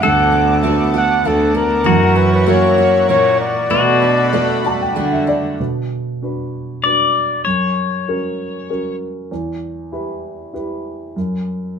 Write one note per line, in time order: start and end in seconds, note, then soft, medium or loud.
0.00 1.01 D2 medium
0.00 0.62 A3 medium
0.00 1.86 A4 loud
0.00 0.63 F#5 loud
0.00 5.55 F#5 medium
0.00 1.85 A5 medium
0.00 1.82 D6 medium
0.04 1.83 D3 medium
0.04 1.85 B3 medium
0.32 0.63 D4 medium
0.63 1.25 A3 medium
0.63 1.83 B3 soft
0.63 1.24 D4 medium
0.63 1.83 D4 soft
0.63 0.93 F#4 medium
0.63 1.83 F#4 medium
0.94 1.25 F#4 medium
0.94 1.29 F#5 loud
1.24 1.74 D2 medium
1.24 1.53 D4 medium
1.24 2.48 F#4 medium
1.24 1.58 A4 medium
1.55 1.92 D4 medium
1.55 2.18 A#4 medium
1.84 2.85 F#2 loud
1.84 3.70 E3 medium
1.84 3.67 F#3 medium
1.84 3.67 F#4 medium
1.84 3.69 A#4 medium
1.84 3.69 E5 medium
1.84 3.69 C#6 medium
2.16 2.46 C#4 medium
2.16 2.32 B4 medium
2.34 2.50 B4 medium
2.46 3.08 A#3 medium
2.46 3.08 C#4 medium
2.46 3.67 E4 soft
2.46 3.67 F#4 soft
2.46 2.77 F#4 medium
2.46 3.68 A#4 medium
2.46 3.09 C#5 medium
2.78 3.10 F#4 medium
3.08 3.58 A#2 medium
3.08 3.70 A#3 medium
3.08 3.40 C#4 medium
3.08 3.78 F#4 medium
3.08 3.38 C#5 medium
3.41 4.92 D5 medium
3.70 4.71 B2 medium
3.70 4.32 A3 medium
3.70 5.55 B3 medium
3.70 5.23 F#4 medium
3.70 5.57 A4 medium
3.70 5.57 D5 medium
3.70 5.58 B5 medium
4.02 4.32 D4 medium
4.33 4.95 A3 medium
4.33 4.95 D4 medium
4.33 4.63 F#4 medium
4.33 5.55 A4 soft
4.33 5.55 B4 soft
4.33 5.27 D5 soft
4.64 4.96 F#4 medium
4.64 4.80 A5 medium
4.81 4.96 G5 medium
4.96 5.46 D3 medium
4.96 5.65 A3 medium
4.96 5.26 D4 medium
4.96 5.66 F#4 medium
4.96 5.11 F#5 medium
5.12 5.27 E5 medium
5.27 5.65 D4 soft
5.27 5.57 D5 medium
5.60 7.42 B2 soft
6.22 6.82 D4 soft
6.22 6.83 F#4 soft
6.22 6.83 B4 soft
6.84 7.44 D4 soft
6.84 7.44 F#4 soft
6.84 7.45 B4 soft
6.84 7.44 D5 medium
7.45 9.27 F#2 soft
7.45 8.95 C#5 medium
8.08 8.68 C#4 soft
8.08 8.68 F#4 soft
8.08 8.68 A#4 soft
8.69 9.29 C#4 soft
8.69 9.29 F#4 soft
8.69 9.29 A#4 soft
9.31 11.12 E2 medium
9.92 10.52 E4 soft
9.92 10.52 G4 soft
9.92 10.53 B4 soft
10.54 11.14 E4 soft
10.54 11.14 G4 soft
10.54 11.14 B4 soft
11.16 11.79 F#2 soft